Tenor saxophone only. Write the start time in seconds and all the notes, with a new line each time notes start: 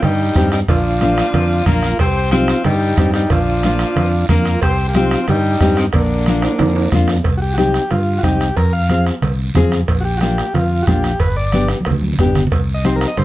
0.03 G3
0.53 G3
0.70 F3
1.66 A#3
2.00 C4
2.32 C4
2.66 G3
3.15 G3
3.32 F3
4.29 A#3
4.62 C4
4.89 A#3
4.96 C4
5.29 G3
5.78 D#3
5.93 D3